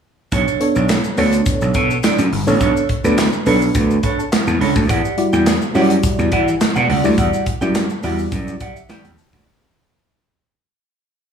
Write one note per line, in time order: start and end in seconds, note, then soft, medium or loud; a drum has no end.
0.32 0.44 B1 loud
0.32 0.58 D4 medium
0.32 0.59 A4 medium
0.32 0.59 C#5 loud
0.32 kick loud
0.32 closed hi-hat medium
0.32 shaker medium
0.48 shaker medium
0.60 0.96 B3 medium
0.60 0.96 D4 medium
0.60 0.96 A4 medium
0.60 0.97 C#5 loud
0.60 muted clean electric guitar stroke soft
0.60 closed hi-hat medium
0.75 0.98 B1 medium
0.75 0.88 D4 medium
0.75 0.88 A4 medium
0.75 0.88 D5 medium
0.75 shaker medium
0.89 muted clean electric guitar stroke soft
0.89 snare loud
0.89 clap medium
0.89 closed hi-hat medium
0.89 shaker medium
1.04 muted clean electric guitar stroke soft
1.04 shaker soft
1.17 1.40 D2 medium
1.17 1.89 B3 medium
1.17 1.35 D4 medium
1.17 1.89 D4 medium
1.17 1.89 A4 medium
1.17 1.32 A4 medium
1.17 1.90 C#5 loud
1.17 1.32 C#5 loud
1.17 open hi-hat medium
1.17 shaker soft
1.33 muted clean electric guitar stroke soft
1.33 closed hi-hat medium
1.33 shaker medium
1.46 kick loud
1.46 closed hi-hat medium
1.46 shaker medium
1.61 1.72 B1 medium
1.61 muted clean electric guitar stroke medium
1.61 shaker medium
1.74 1.97 B2 loud
1.74 1.92 D4 medium
1.74 1.90 A4 medium
1.74 1.89 C#5 loud
1.74 kick medium
1.74 closed hi-hat medium
1.74 shaker medium
1.90 muted clean electric guitar stroke soft
1.90 shaker medium
2.03 2.21 D4 medium
2.03 2.18 A4 medium
2.03 2.18 D5 medium
2.03 snare loud
2.03 clap medium
2.03 closed hi-hat medium
2.03 shaker medium
2.18 2.29 F#2 medium
2.18 muted clean electric guitar stroke medium
2.18 closed hi-hat medium
2.18 shaker medium
2.32 2.44 G1 medium
2.32 muted clean electric guitar stroke soft
2.32 open hi-hat medium
2.47 2.58 A1 medium
2.47 2.82 B3 loud
2.47 2.82 D4 medium
2.47 2.59 D4 soft
2.47 2.82 A4 medium
2.47 2.60 A4 medium
2.47 2.60 C#5 medium
2.47 2.82 C#5 loud
2.47 shaker medium
2.61 2.72 B1 loud
2.61 2.87 D4 medium
2.61 2.87 A4 medium
2.61 2.88 C#5 loud
2.61 kick loud
2.61 closed hi-hat medium
2.61 shaker medium
2.77 shaker medium
2.89 muted clean electric guitar stroke soft
2.89 kick medium
2.89 closed hi-hat medium
3.04 3.26 D2 medium
3.04 3.31 B3 medium
3.04 3.31 D4 medium
3.04 3.17 D4 medium
3.04 3.31 A4 medium
3.04 3.17 A4 medium
3.04 3.31 B4 medium
3.04 3.17 D5 medium
3.04 shaker medium
3.18 muted clean electric guitar stroke soft
3.18 snare loud
3.18 clap medium
3.18 closed hi-hat medium
3.18 shaker medium
3.33 muted clean electric guitar stroke soft
3.33 shaker soft
3.46 3.68 B1 loud
3.46 4.00 B3 medium
3.46 3.64 D4 medium
3.46 4.00 D4 medium
3.46 4.00 A4 medium
3.46 3.61 A4 medium
3.46 4.00 B4 loud
3.46 3.60 C#5 loud
3.46 open hi-hat medium
3.46 shaker soft
3.61 muted clean electric guitar stroke soft
3.61 shaker medium
3.75 3.97 D2 medium
3.75 kick loud
3.75 closed hi-hat loud
3.75 shaker medium
3.90 muted clean electric guitar stroke soft
3.90 shaker soft
4.03 4.21 D4 medium
4.03 4.18 A4 medium
4.03 4.17 C#5 loud
4.03 4.18 B5 medium
4.03 kick medium
4.03 closed hi-hat medium
4.03 shaker soft
4.19 4.31 A5 medium
4.19 muted clean electric guitar stroke soft
4.19 shaker medium
4.32 4.46 F#5 medium
4.32 snare loud
4.32 clap medium
4.32 closed hi-hat medium
4.32 shaker medium
4.47 4.58 E2 medium
4.47 4.60 A5 medium
4.47 muted clean electric guitar stroke soft
4.47 shaker medium
4.60 4.72 C#2 medium
4.60 4.78 D4 medium
4.60 4.75 A4 medium
4.60 4.75 C#5 medium
4.60 4.75 B5 medium
4.60 open hi-hat medium
4.76 4.86 D2 medium
4.76 5.03 A5 medium
4.76 muted clean electric guitar stroke soft
4.76 kick loud
4.76 shaker medium
4.89 5.01 E2 loud
4.89 5.16 G4 medium
4.89 5.16 D5 medium
4.89 5.16 F#5 loud
4.89 kick loud
4.89 closed hi-hat medium
4.89 shaker medium
5.05 shaker medium
5.17 5.53 G3 medium
5.17 5.54 E4 medium
5.17 5.54 F#4 medium
5.17 5.54 D5 loud
5.17 muted clean electric guitar stroke soft
5.17 closed hi-hat medium
5.33 5.55 E2 medium
5.33 5.45 G4 medium
5.33 5.46 D5 medium
5.33 5.45 G5 medium
5.33 shaker medium
5.46 muted clean electric guitar stroke medium
5.46 snare loud
5.46 clap medium
5.46 closed hi-hat medium
5.46 shaker medium
5.61 muted clean electric guitar stroke soft
5.61 shaker soft
5.74 5.97 F#2 medium
5.74 6.46 G3 loud
5.74 6.46 E4 medium
5.74 6.46 F#4 medium
5.74 5.92 G4 loud
5.74 5.82 C#5 medium
5.74 5.90 D5 medium
5.74 5.89 F#5 loud
5.74 open hi-hat medium
5.74 shaker soft
5.82 6.50 D5 loud
5.90 muted clean electric guitar stroke soft
5.90 closed hi-hat medium
5.90 shaker medium
6.03 kick loud
6.03 closed hi-hat loud
6.03 shaker loud
6.19 6.29 E2 medium
6.19 muted clean electric guitar stroke soft
6.19 shaker soft
6.32 6.54 E3 medium
6.32 6.49 G4 medium
6.32 6.47 D5 loud
6.32 6.46 F#5 loud
6.32 kick medium
6.32 closed hi-hat medium
6.32 shaker medium
6.47 muted clean electric guitar stroke medium
6.47 shaker medium
6.61 muted clean electric guitar stroke soft
6.61 snare loud
6.61 clap medium
6.61 closed hi-hat medium
6.61 shaker medium
6.76 6.86 B2 medium
6.76 6.88 G4 medium
6.76 6.88 D5 medium
6.76 6.89 F#5 medium
6.76 shaker medium
6.89 7.01 C#2 medium
6.89 7.03 G4 medium
6.89 7.03 D5 medium
6.89 7.03 F#5 medium
6.89 open hi-hat medium
7.04 7.15 D2 medium
7.04 7.39 G3 medium
7.04 7.39 E4 medium
7.04 7.39 F#4 medium
7.04 7.40 D5 loud
7.04 muted clean electric guitar stroke soft
7.04 shaker medium
7.17 7.30 E2 loud
7.17 7.44 G4 medium
7.17 7.44 D5 medium
7.17 7.45 F#5 medium
7.17 kick loud
7.17 closed hi-hat medium
7.17 shaker medium
7.33 shaker medium
7.46 muted clean electric guitar stroke soft
7.46 kick medium
7.46 closed hi-hat medium
7.46 shaker soft
7.61 7.84 F#2 medium
7.61 7.88 G3 medium
7.61 7.88 E4 medium
7.61 7.88 F#4 medium
7.61 7.73 G4 soft
7.61 7.74 D5 medium
7.61 7.88 D5 medium
7.61 7.74 G5 medium
7.61 shaker medium
7.74 muted clean electric guitar stroke soft
7.74 snare loud
7.74 clap medium
7.74 closed hi-hat medium
7.74 shaker medium
7.90 muted clean electric guitar stroke soft
7.90 shaker soft
8.03 8.26 E2 medium
8.03 8.57 G3 medium
8.03 8.57 E4 medium
8.03 8.57 F#4 medium
8.03 8.21 G4 medium
8.03 8.18 D5 medium
8.03 8.57 D5 loud
8.03 8.17 F#5 loud
8.03 open hi-hat medium
8.03 shaker soft
8.18 muted clean electric guitar stroke soft
8.18 shaker soft
8.32 8.54 F#2 medium
8.32 kick loud
8.32 closed hi-hat loud
8.32 shaker medium
8.47 muted clean electric guitar stroke soft
8.47 shaker soft
8.60 8.78 G4 medium
8.60 8.75 D5 medium
8.60 8.74 F#5 medium
8.60 kick medium
8.60 closed hi-hat medium
8.60 shaker medium
8.76 8.89 E5 medium
8.76 muted clean electric guitar stroke soft
8.76 shaker medium
8.89 9.01 E3 medium
8.89 9.06 G4 medium
8.89 9.04 D5 medium
8.89 9.04 F#5 medium
8.89 9.04 G5 medium
8.89 snare loud
8.89 clap medium
8.89 closed hi-hat medium
8.89 shaker medium
9.04 9.15 E2 medium
9.04 9.17 G5 medium
9.04 muted clean electric guitar stroke medium
9.04 closed hi-hat medium
9.04 shaker medium
9.17 9.32 A5 medium
9.17 muted clean electric guitar stroke soft
9.17 open hi-hat medium
9.17 shaker medium
9.32 9.44 D2 medium
9.32 9.46 G4 soft
9.32 9.45 D5 medium
9.32 9.45 F#5 medium
9.32 9.60 B5 medium
9.32 kick loud
9.32 shaker medium